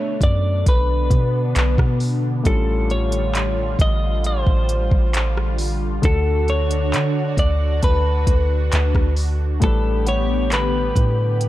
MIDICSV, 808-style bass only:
0, 0, Header, 1, 2, 480
1, 0, Start_track
1, 0, Tempo, 895522
1, 1315, Time_signature, 4, 2, 24, 8
1, 6156, End_track
2, 0, Start_track
2, 0, Title_t, "808-style bass"
2, 0, Program_c, 0, 38
2, 113, Note_on_c, 0, 42, 99
2, 344, Note_off_c, 0, 42, 0
2, 357, Note_on_c, 0, 35, 105
2, 586, Note_off_c, 0, 35, 0
2, 594, Note_on_c, 0, 47, 94
2, 825, Note_off_c, 0, 47, 0
2, 836, Note_on_c, 0, 35, 109
2, 951, Note_off_c, 0, 35, 0
2, 956, Note_on_c, 0, 47, 99
2, 1301, Note_off_c, 0, 47, 0
2, 1315, Note_on_c, 0, 33, 113
2, 2014, Note_off_c, 0, 33, 0
2, 2032, Note_on_c, 0, 33, 106
2, 2379, Note_off_c, 0, 33, 0
2, 2395, Note_on_c, 0, 33, 97
2, 2625, Note_off_c, 0, 33, 0
2, 2636, Note_on_c, 0, 33, 101
2, 3214, Note_off_c, 0, 33, 0
2, 3235, Note_on_c, 0, 38, 106
2, 3717, Note_on_c, 0, 50, 95
2, 3725, Note_off_c, 0, 38, 0
2, 3944, Note_off_c, 0, 50, 0
2, 3952, Note_on_c, 0, 38, 101
2, 4184, Note_off_c, 0, 38, 0
2, 4197, Note_on_c, 0, 38, 109
2, 4426, Note_off_c, 0, 38, 0
2, 4434, Note_on_c, 0, 38, 101
2, 4665, Note_off_c, 0, 38, 0
2, 4680, Note_on_c, 0, 38, 107
2, 4793, Note_off_c, 0, 38, 0
2, 4796, Note_on_c, 0, 38, 96
2, 5141, Note_off_c, 0, 38, 0
2, 5157, Note_on_c, 0, 33, 115
2, 5854, Note_off_c, 0, 33, 0
2, 5874, Note_on_c, 0, 45, 106
2, 6156, Note_off_c, 0, 45, 0
2, 6156, End_track
0, 0, End_of_file